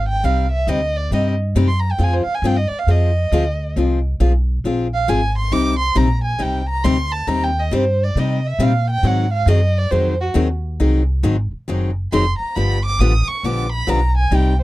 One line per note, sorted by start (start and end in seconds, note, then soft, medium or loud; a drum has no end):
0.00 0.22 G#1 medium
0.09 0.26 G5 medium
0.23 0.66 C2 medium
0.23 0.45 C3 medium
0.23 0.46 G3 medium
0.23 0.46 C4 medium
0.23 0.46 D#4 medium
0.23 0.46 G4 medium
0.23 0.51 F5 medium
0.52 0.70 E5 medium
0.67 1.10 D2 medium
0.67 0.79 C3 medium
0.67 0.80 G3 medium
0.67 0.80 C4 medium
0.67 0.80 D#4 medium
0.67 0.80 G4 medium
0.67 0.98 D#5 medium
0.96 1.12 D5 medium
1.11 1.54 G2 medium
1.11 1.33 C3 medium
1.11 1.34 G3 medium
1.11 1.34 C4 medium
1.11 1.34 D#4 medium
1.11 1.34 G4 medium
1.11 1.29 D#5 medium
1.55 1.98 F#2 medium
1.55 1.67 C3 medium
1.55 1.67 G3 medium
1.55 1.68 C4 medium
1.55 1.68 D#4 medium
1.55 1.68 G4 medium
1.68 1.81 C6 medium
1.80 1.93 A#5 medium
1.91 2.05 G5 medium
1.98 2.25 F2 medium
1.98 2.21 F3 medium
1.98 2.21 C4 medium
1.98 2.21 F4 medium
1.98 2.22 G#4 medium
2.03 2.15 G#5 medium
2.13 2.24 C5 medium
2.23 2.36 F5 loud
2.23 muted upright bass stroke soft
2.35 2.48 G#5 medium
2.42 2.69 G2 medium
2.42 2.55 F3 medium
2.42 2.56 C4 medium
2.42 2.56 F4 medium
2.42 2.56 G#4 medium
2.47 2.58 G5 medium
2.57 2.69 D#5 medium
2.67 2.80 D5 medium
2.67 muted upright bass stroke soft
2.79 2.92 F5 medium
2.87 3.30 F2 medium
2.87 3.09 F3 medium
2.87 3.10 C4 medium
2.87 3.10 F4 medium
2.87 3.10 G#4 medium
2.87 3.77 D#5 medium
3.32 3.74 D2 medium
3.32 3.44 F3 medium
3.32 3.44 C4 medium
3.32 3.44 F4 medium
3.32 3.44 G#4 medium
3.76 4.19 C2 medium
3.76 3.98 F3 medium
3.76 3.98 C4 medium
3.76 3.98 F4 medium
3.76 3.99 G#4 medium
4.20 4.63 B1 medium
4.20 4.31 F3 medium
4.20 4.32 C4 medium
4.20 4.32 F4 medium
4.20 4.32 G#4 medium
4.64 5.07 A#1 medium
4.64 4.86 F3 medium
4.64 4.86 C4 medium
4.64 4.86 F4 medium
4.64 4.87 G#4 medium
4.94 5.10 F5 medium
5.08 5.51 G#1 medium
5.08 5.19 F3 medium
5.08 5.20 C4 medium
5.08 5.20 F4 medium
5.08 5.20 G#4 medium
5.08 5.36 G#5 medium
5.38 5.54 C6 medium
5.52 5.95 C2 medium
5.52 5.73 C3 medium
5.52 5.73 G3 medium
5.52 5.74 C4 medium
5.52 5.74 D#4 medium
5.52 5.74 G4 medium
5.52 5.78 D6 loud
5.79 5.98 C6 loud
5.95 6.39 A#1 medium
5.95 6.07 C3 medium
5.95 6.07 G3 medium
5.95 6.07 C4 medium
5.95 6.07 D#4 medium
5.95 6.08 G4 medium
5.95 6.23 A#5 medium
6.24 6.43 G#5 medium
6.39 6.83 C2 medium
6.39 6.61 C3 medium
6.39 6.61 G3 medium
6.39 6.61 C4 medium
6.39 6.61 D#4 medium
6.39 6.62 G4 medium
6.39 6.69 G5 medium
6.69 6.85 A#5 medium
6.84 7.27 D2 medium
6.84 6.96 C3 medium
6.84 6.96 G3 medium
6.84 6.96 C4 medium
6.84 6.96 D#4 loud
6.84 6.96 G4 loud
6.84 7.13 C6 loud
7.12 7.29 A5 medium
7.27 7.70 D#2 medium
7.27 7.49 C3 medium
7.27 7.49 G3 medium
7.27 7.49 C4 medium
7.27 7.50 D#4 medium
7.27 7.50 G4 medium
7.27 7.45 A#5 loud
7.44 7.61 G5 medium
7.59 7.75 D#5 medium
7.71 8.15 G2 medium
7.71 7.83 C3 medium
7.71 7.84 G3 medium
7.71 7.84 C4 medium
7.71 7.84 D#4 medium
7.71 7.84 G4 medium
7.71 8.05 C5 medium
8.03 8.21 D5 medium
8.15 8.58 C3 medium
8.15 8.38 C3 medium
8.15 8.38 G3 medium
8.15 8.38 C4 medium
8.15 8.39 D#4 medium
8.15 8.39 G4 medium
8.15 8.48 D#5 medium
8.46 8.65 E5 medium
8.59 9.02 A#2 medium
8.59 8.71 C3 medium
8.59 8.71 G3 medium
8.59 8.72 C4 medium
8.59 8.72 D#4 loud
8.59 8.72 G4 medium
8.63 8.90 F5 medium
8.90 9.08 G5 loud
9.03 9.46 G#2 medium
9.03 9.25 D#3 medium
9.03 9.25 F#3 medium
9.03 9.26 C4 medium
9.03 9.26 D#4 medium
9.03 9.26 G#4 medium
9.03 9.32 F#5 medium
9.33 9.49 F5 medium
9.46 9.90 F#2 medium
9.46 9.59 D#3 medium
9.46 9.59 F#3 medium
9.46 9.59 C4 medium
9.46 9.59 D#4 medium
9.46 9.60 G#4 medium
9.46 9.79 D#5 medium
9.78 9.92 D5 medium
9.91 10.35 F2 medium
9.91 10.13 D#3 medium
9.91 10.14 F#3 medium
9.91 10.13 C4 medium
9.91 10.14 D#4 medium
9.91 10.14 G#4 medium
9.91 10.19 C5 medium
10.21 10.30 F#4 medium
10.34 10.78 D#2 medium
10.34 10.46 D#3 medium
10.34 10.47 F#3 medium
10.34 10.47 C4 medium
10.34 10.47 D#4 loud
10.34 10.47 G#4 loud
10.80 11.23 C2 medium
10.80 11.01 D#3 medium
10.80 11.01 F#3 medium
10.80 11.01 C4 medium
10.80 11.02 D#4 medium
10.80 11.02 G#4 medium
11.23 11.50 G#1 medium
11.23 11.35 D#3 medium
11.23 11.35 F#3 medium
11.23 11.36 C4 medium
11.23 11.35 D#4 medium
11.23 11.36 G#4 medium
11.52 muted upright bass stroke soft
11.68 12.10 F#1 medium
11.68 11.89 D#3 medium
11.68 11.90 F#3 medium
11.68 11.90 C4 medium
11.68 11.90 D#4 medium
11.68 11.90 G#4 medium
12.12 12.38 F1 medium
12.12 12.23 D#3 medium
12.12 12.24 F#3 medium
12.12 12.24 C4 medium
12.12 12.24 D#4 loud
12.12 12.24 G#4 medium
12.12 12.38 C6 medium
12.38 12.57 A#5 medium
12.38 muted upright bass stroke soft
12.56 12.98 G1 medium
12.56 12.77 D3 medium
12.56 12.77 F3 medium
12.56 12.77 B3 medium
12.56 12.78 D4 medium
12.56 12.78 G4 medium
12.56 12.84 B5 medium
12.85 13.01 D6 loud
12.99 13.25 A1 medium
12.99 13.11 D3 medium
12.99 13.12 F3 medium
12.99 13.12 B3 medium
12.99 13.12 D4 medium
12.99 13.12 G4 medium
12.99 13.29 D#6 loud
13.28 13.46 C#6 loud
13.28 muted upright bass stroke soft
13.43 13.86 A#1 medium
13.43 13.65 D3 medium
13.43 13.65 F3 medium
13.43 13.66 B3 medium
13.43 13.66 D4 medium
13.43 13.66 G4 medium
13.43 13.72 D6 medium
13.72 13.91 B5 medium
13.87 14.30 B1 medium
13.87 13.99 D3 medium
13.87 13.99 F3 medium
13.87 13.99 B3 medium
13.87 13.99 D4 loud
13.87 13.99 G4 loud
13.87 14.16 A#5 loud
14.18 14.36 G#5 medium
14.31 14.63 C2 medium
14.31 14.53 C3 medium
14.31 14.53 G3 medium
14.31 14.53 C4 medium
14.31 14.53 D#4 medium
14.31 14.53 G4 medium
14.35 14.61 G5 medium